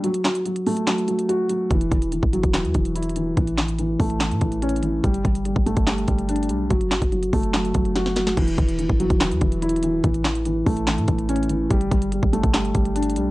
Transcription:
<<
  \new Staff \with { instrumentName = "Felt piano" } { \clef bass \time 4/4 \key e \dorian \tempo 4 = 144 fis8 fis8 fis8 a8 fis8 fis8 fis'8 fis8 | e8 e8 e8 fis8 e8 e8 e'8 e8 | e8 e8 e8 a8 e8 e8 cis'8 e8 | g8 g8 g8 a8 g8 g8 d'8 g8 |
fis8 fis8 fis8 a8 fis8 fis8 fis'8 fis8 | e8 e8 e8 fis8 e8 e8 e'8 e8 | e8 e8 e8 a8 e8 e8 cis'8 e8 | g8 g8 g8 a8 g8 g8 d'8 g8 | }
  \new Staff \with { instrumentName = "808-style bass" } { \clef bass \time 4/4 \key e \dorian r1 | e,,8 e,,8. g,,8 e,,8 e,16 e,,4. | a,,4. a,,8. a,16 a,,4. | g,,8 g,,8. g,,8 g,,8. g,,4 b,,8 |
fis,,8 g,,16 fis,,8. fis,,4 fis,,4. | e,,8 e,,8. g,,8 e,,8 e,16 e,,4. | a,,4. a,,8. a,16 a,,4. | g,,8 g,,8. g,,8 g,,8. g,,4 b,,8 | }
  \new DrumStaff \with { instrumentName = "Drums" } \drummode { \time 4/4 hh16 hh16 <hc hh sn>16 hh16 hh16 hh16 hho16 hh16 <hc hh sn>16 hh16 hh16 hh16 hh8 hh8 | <hh bd>16 hh16 <hh bd>16 hh16 hh16 bd16 hh16 <hh bd>16 <hc hh sn>16 hh16 <hh bd>16 hh16 \tuplet 3/2 { hh16 hh16 hh16 hh16 r16 r16 } | <hh bd>16 hh16 <hc hh sn>16 hh16 hh8 <hho bd>16 hh16 <hc hh sn>16 hh16 <hh bd>16 hh16 \tuplet 3/2 { hh16 hh16 hh16 hh16 r16 r16 } | <hh bd>16 hh16 <hh bd>16 hh16 hh16 bd16 hh16 <hh bd>16 <hc hh sn>16 hh16 <hh bd>16 hh16 \tuplet 3/2 { hh16 hh16 hh16 hh16 r16 r16 } |
<hh bd>16 hh16 <hc hh sn>16 <hh bd>16 hh16 hh16 <hho bd>16 hh16 <hc hh sn>16 hh16 <hh bd>16 hh16 <hh sn>16 sn16 <hh sn>16 sn16 | <cymc hh bd>16 hh16 <hh bd>16 hh16 hh16 bd16 hh16 <hh bd>16 <hc hh sn>16 hh16 <hh bd>16 hh16 \tuplet 3/2 { hh16 hh16 hh16 hh16 r16 r16 } | <hh bd>16 hh16 <hc hh sn>16 hh16 hh8 <hho bd>16 hh16 <hc hh sn>16 hh16 <hh bd>16 hh16 \tuplet 3/2 { hh16 hh16 hh16 hh16 r16 r16 } | <hh bd>16 hh16 <hh bd>16 hh16 hh16 bd16 hh16 <hh bd>16 <hc hh sn>16 hh16 <hh bd>16 hh16 \tuplet 3/2 { hh16 hh16 hh16 hh16 r16 r16 } | }
>>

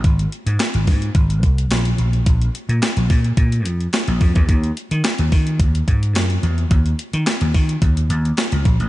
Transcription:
<<
  \new Staff \with { instrumentName = "Slap bass" } { \clef bass \time 4/4 \key bes \minor \tempo 4 = 108 aes,,8 r16 aes,16 r16 aes,,16 aes,8 aes,,8 c,8 bes,,8 bes,,8 | bes,,8 r16 bes,16 r16 bes,,16 bes,8 bes,8 f,8 r16 bes,,16 f,16 fes,16 | ees,8 r16 ees16 r16 ees,16 ees8 ees,8 aes,8 ges,8 fes,8 | ees,8 r16 ees16 r16 ees,16 ees8 ees,8 ees,8 r16 des,16 bes,,16 a,,16 | }
  \new DrumStaff \with { instrumentName = "Drums" } \drummode { \time 4/4 <hh bd>16 hh16 hh16 hh16 <hc hh sn>16 hh16 <hho bd>16 hh16 <hh bd>16 hh16 <hh bd>16 hh16 <hc hh sn>16 hh16 hh16 hh16 | <hh bd>16 hh16 hh16 hh16 <hc hh sn>16 hh16 <hho bd>16 hh16 <hh bd>16 hh16 hh16 hh16 <hc hh sn>16 hh16 <hho bd>16 <hh bd>16 | <hh bd>16 hh16 hh16 hh16 <hc hh sn>16 hh16 <hho bd>16 hh16 <hh bd>16 hh16 <hh bd>16 hh16 <hc hh sn>16 hh16 hh16 hh16 | <hh bd>16 hh16 hh16 hh16 <hc hh sn>16 hh16 <hho bd>16 hh16 <hh bd>16 hh16 hh16 hh16 <hc hh sn>16 hh16 <hh bd>16 hh16 | }
>>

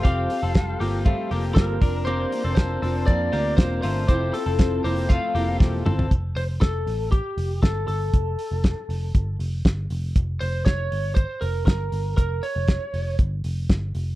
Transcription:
<<
  \new Staff \with { instrumentName = "Lead electric guitar" } { \time 4/4 \key f \major \tempo 4 = 119 f''2. bes'4 | c''4 c''4 d''4 c''8 c''8 | c''8 a'4 c''8 f''4 r4 | r8 c''8 a'4 g'4 a'8 a'8~ |
a'2~ a'8 r4. | r8 c''8 des''4 c''8 bes'8 bes'4 | bes'8 des''4. r2 | }
  \new Staff \with { instrumentName = "Steel-string acoustic guitar" } { \time 4/4 \key f \major <f g c' f' a'>8 <c' f' a'>8 <g c' f' a'>8 <c' f' a'>8 <f g c' f' a'>8 <c' f' a'>8 <g c' f' a'>8 <c' f' bes' d''>8 | <f bes c' f' bes' d''>8 <c' f' bes' d''>8 <c' f' bes' d''>8 <c' f' bes' d''>8 <f bes c' f' bes' d''>8 <c' f' bes' d''>8 <c' f' bes' d''>8 <c' f' bes' d''>8 | <f c' e' a'>8 <c' e' a'>8 <f c' e' a'>8 <c' e' a'>8 <f c' e' a'>8 <c' e' a'>8 <f c' e' a'>8 <c' e' a'>8 | r1 |
r1 | r1 | r1 | }
  \new Staff \with { instrumentName = "Transistor combo organ" } { \time 4/4 \key f \major <f' g' a'>2.~ <f' g' a'>8 <c' d' bes'>8~ | <c' d' bes'>1 | <c' f' a'>1 | r1 |
r1 | r1 | r1 | }
  \new Staff \with { instrumentName = "Clean electric guitar" } { \time 4/4 \key f \major <c' g'>8. <c' a'>8. <bes g'>8 <a f'>8 <bes g'>4 <d' bes'>8 | <bes g'>8. <c' a'>8. <c' a'>4 <bes g'>4 <a f'>8 | <c' g'>8. <c' a'>8. <bes g'>8 <a f'>8 <bes g'>4 <c' a'>8 | r1 |
r1 | r1 | r1 | }
  \new Staff \with { instrumentName = "Picked electric bass" } { \clef bass \time 4/4 \key f \major f,,8 r16 f,,8. g,,8. r16 f,,8 g,,8 f,,8~ | f,,8 r16 f,,8. f,,8 f,8 d,8 e,,8 g,,8 | f,,8 r16 f,,8. f,,8. r16 f,,8 e,,8 g,,8 | f,,8 f,,8 f,,8 a,,8. r16 f,,8 g,,8 g,,8 |
f,,8 r16 f,,8 r16 f,,8 g,,8 f,,8 g,,8 f,,8 | f,,8 f,,8 f,,8 g,,8. r16 f,,8 g,,8 g,,8 | f,,8 r16 f,,8 r16 f,,8 g,,8 f,,8 g,,8 f,,8 | }
  \new DrumStaff \with { instrumentName = "Drums" } \drummode { \time 4/4 <hh bd>8 hho8 <hh bd sn>8 hho8 <hh bd>8 hho8 <hh bd sn>8 <hho bd>8 | hh8 hho8 <hh bd sn>8 hho8 <hh bd>8 hho8 <hh bd sn>8 hho8 | <hh bd>8 hho8 <hh bd sn>8 hho8 <hh bd>8 hho8 <bd sn>8 toml16 tomfh16 | <hh bd>8 hho8 <hh bd sn>8 hho8 <hh bd>8 hho8 <hh bd sn>8 hho8 |
<hh bd>8 hho8 <hh bd sn>8 hho8 <hh bd>8 hho8 <hh bd sn>8 hho8 | <hh bd>8 hho8 <hh bd sn>8 hho8 <hh bd>8 hho8 <hh bd sn>8 hho8 | <hh bd>8 hho8 <hh bd sn>8 hho8 <hh bd>8 hho8 <hh bd sn>8 hho8 | }
>>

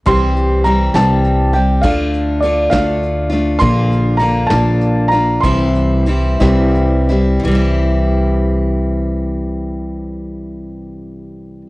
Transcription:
<<
  \new Staff \with { instrumentName = "Felt piano" } { \time 6/8 \key c \mixolydian \tempo 4. = 64 c'''4 bes''8 a''4 g''8 | f''4 d''8 f''4 r8 | c'''4 bes''8 a''4 bes''8 | c'''2 r4 |
r2. | r2. | }
  \new Staff \with { instrumentName = "Steel-string acoustic guitar" } { \time 6/8 \key c \mixolydian <c e g c' g'>4 <e g c' g'>8 <c e g c' g'>4 <g c' g'>8 | <d a d' f'>4 <d a d' f'>8 <d a d' f'>4 <a d' f'>8 | <bes, d bes d' f'>4 <d bes d' f'>8 <bes, d bes d' f'>4 <bes d' f'>8 | <c e g c' e'>4 <e g c' e'>8 <c e g c' e'>4 <g c' e'>8 |
<c e g c' e'>2.~ | <c e g c' e'>2. | }
  \new Staff \with { instrumentName = "Upright bass" } { \clef bass \time 6/8 \key c \mixolydian c,4. c,4. | d,4. d,4. | bes,,4. bes,,4. | c,4. c,4. |
c,2.~ | c,2. | }
  \new DrumStaff \with { instrumentName = "Drums" } \drummode { \time 6/8 <hh bd>8 hh8 hh8 <hh sn>8 hh8 hh8 | <hh bd>8 hh8 hh8 <hh bd sn>8 hh8 hh8 | <hh bd>8 hh8 hh8 <hh sn>8 hh8 hh8 | <hh bd>8 hh8 hh8 <hh bd sn>8 hh8 hh8 |
r4. r4. | r4. r4. | }
>>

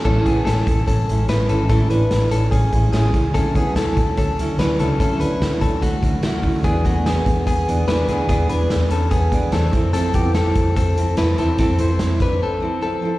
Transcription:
<<
  \new Staff \with { instrumentName = "Clean electric guitar" } { \time 4/4 \key a \major \tempo 4 = 146 <cis' a'>8 <b gis'>8 <cis' a'>4 <cis' a'>4 <e' b'>8 <cis' a'>8 | <cis' a'>8 <d' b'>4 <cis' a'>8 <cis' gis'>4 <cis' gis'>4 | <cis' a'>8 <b gis'>8 <cis' a'>4 <cis' a'>4 <d' b'>8 <cis' a'>8 | <cis' a'>8 <d' b'>4 <cis' a'>8 <a fis'>4 <a fis'>4 |
<b gis'>8 <a fis'>8 <b gis'>4 <b gis'>4 <d' b'>8 <b gis'>8 | <b gis'>8 <d' b'>4 <cis' a'>8 <b gis'>4 <c' a'>4 | <c' a'>8 <b g'>8 <c' a'>4 <c' a'>4 <e' b'>8 <c' a'>8 | <c' a'>8 <e' c''>4 <d' b'>8 <c' a'>4 <c' a'>4 | }
  \new Staff \with { instrumentName = "Steel-string acoustic guitar" } { \time 4/4 \key a \major <a, e gis cis' e'>8. <cis' e'>4.~ <cis' e'>16 <e gis cis' e'>8 <e gis cis' e'>8 <e gis cis' e'>8 | <a, e gis cis' e'>8. <gis cis' e'>4.~ <gis cis' e'>16 <e gis cis' e'>8 <e gis cis' e'>8 <e gis cis' e'>8 | <d fis cis' e'>8. <fis cis' e'>4.~ <fis cis' e'>16 <d fis cis' e'>8 <d fis cis' e'>8 <d fis cis' e'>8 | <d fis cis' e'>8. <fis cis' e'>4.~ <fis cis' e'>16 <d fis cis' e'>8 <d fis cis' e'>8 <d fis cis' e'>8 |
<e b d' gis'>8. <b d' gis'>4.~ <b d' gis'>16 <e b d' gis'>8 <e b d' gis'>8 <e b d' gis'>8 | <e b d' gis'>8. <b d' gis'>4.~ <b d' gis'>16 <e b d' gis'>8 <e b d' gis'>8 <f c' e' a'>8 | <f c' e' a'>8. <c' e' a'>4.~ <c' e' a'>16 <f c' e' a'>8 <f c' e' a'>8 <f c' e' a'>8 | <f c' e' a'>8. <c' e' a'>4.~ <c' e' a'>16 <f c' e' a'>8 <f c' e' a'>8 <f c' e' a'>8 | }
  \new Staff \with { instrumentName = "Fingered electric bass" } { \clef bass \time 4/4 \key a \major a,,8 a,,8 a,,8 a,,8 a,,8 a,,8 a,,8 gis,,8 | a,,8 a,,8 a,,8 a,,8 a,,8 a,,8 a,,8 cis,8 | d,8 d,8 d,8 d,8 d,8 d,8 d,8 cis,8 | d,8 d,8 d,8 d,8 d,8 d,8 d,8 d,8 |
e,8 e,8 e,8 e,8 e,8 e,8 e,8 d,8 | e,8 e,8 e,8 e,8 e,8 e,8 e,8 f,8~ | f,8 f,8 f,8 f,8 f,8 f,8 f,8 e,8 | f,8 f,8 f,8 f,8 r2 | }
  \new DrumStaff \with { instrumentName = "Drums" } \drummode { \time 4/4 <cymc bd>8 <hh bd>8 <hh sn>8 <hh bd>8 <hh bd>8 hh8 <hh sn>8 hh8 | <hh bd>8 hh8 <hh sn>8 hh8 <hh bd>8 <hh bd>8 <hh sn>8 <hh bd>8 | <hh bd>8 <hh bd>8 <hh sn>8 <hh bd>8 <hh bd>8 hh8 <hh sn>8 hh8 | <hh bd>8 hh8 <hh sn>8 <hh bd>8 <hh bd>8 <hh bd>8 <hh sn>8 <hho bd>8 |
<hh bd>8 <hh bd>8 <hh sn>8 <hh bd>8 <hh bd>8 hh8 <hh sn>8 hh8 | <hh bd>8 hh8 <hh sn>8 hh8 <hh bd>8 <hh bd>8 <hh sn>8 <hh bd>8 | hh8 <hh bd>8 <hh sn>8 <hh bd>8 <hh bd>8 hh8 <hh sn>8 hh8 | <hh bd>8 hh8 <hh sn>8 <hh bd>8 r4 r4 | }
>>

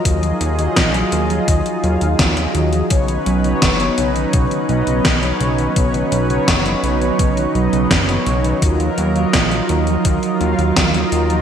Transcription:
<<
  \new Staff \with { instrumentName = "Analog synth pad" } { \time 4/4 \key ees \minor \tempo 4 = 84 << { <ees' f' aes'>1 | <cis' b'>1~ | <cis' b'>1 | <f' bes'>1 | } \\ { ges1~ | ges1~ | ges1~ | ges1 | } >> }
  \new Staff \with { instrumentName = "Analog polysynth" } { \time 4/4 \key ees \minor <ges f' ees''>8. <ges f' ees''>4 <ges f' ees''>8. <ges f' f''>8. <ges f' ees''>8. | <b dis' cis''>8. <b dis' cis''>4 <b dis' cis''>8. <b dis' dis''>8. <b dis' cis''>8. | <b dis' cis''>8. <b dis' cis''>4 <b dis' cis''>8. <b dis' dis''>8. <b dis' cis''>8. | <ges f' ees''>8. <ges f' ees''>4 <ges f' ees''>8. <ges f' f''>8. <ges f' ees''>8. | }
  \new Staff \with { instrumentName = "Synth arpeggio sound" } { \clef bass \time 4/4 \key ees \minor ees16 f16 ges16 ees16 f16 ges16 ees16 f16 ees16 f16 ges16 ees16 f16 ges16 ees16 f16 | cis16 dis16 fis16 cis16 dis16 fis16 cis16 dis16 cis16 dis16 fis16 cis16 r16 fis16 cis16 dis16 | cis16 dis16 fis16 cis16 dis16 fis16 cis16 dis16 cis16 dis16 fis16 cis16 dis16 fis16 cis16 dis16 | ees16 f16 ges16 ees16 f16 ges16 ees16 f16 ees16 f16 ges16 ees16 f16 ges16 ees16 f16 | }
  \new Staff \with { instrumentName = "Analog synth bass" } { \clef bass \time 4/4 \key ees \minor ees,8 ees,8 bes,,8 ees,8 ees,16 r16 ees,16 ees,16 ees,8 ees,8 | b,,8 b,,8 fis,,8 b,,8 b,,16 r16 b,,16 b,,16 b,,8 b,,8 | b,,8 b,,8 fis,,8 b,,8 b,,8 b,,16 b,,16 fis,,8 b,,8 | ees,8 ees,8 bes,,8 ees,8 ees,16 r16 ees,16 ees,16 ees,8 ees,8 | }
  \new DrumStaff \with { instrumentName = "Drums" } \drummode { \time 4/4 <hh bd>16 hh16 hh16 hh16 <hh bd sn>16 hh16 hh16 hh16 <hh bd>16 hh16 hh16 hh16 <hh bd sn>16 <hh sn>16 hh16 hh16 | <hh bd>16 hh16 hh16 hh16 <hh bd sn>16 hh16 hh16 hh16 <hh bd>16 hh16 hh16 hh16 <hh bd sn>16 hh16 hh16 hh16 | <hh bd>16 hh16 hh16 hh16 <hh bd sn>16 hh16 hh16 hh16 <hh bd>16 hh16 hh16 hh16 <hh bd sn>16 <hh sn>16 hh16 hh16 | <hh bd>16 hh16 hh16 hh16 <hh bd sn>16 hh16 hh16 hh16 <hh bd>16 hh16 hh16 hh16 <hh bd sn>16 hh16 hh16 hh16 | }
>>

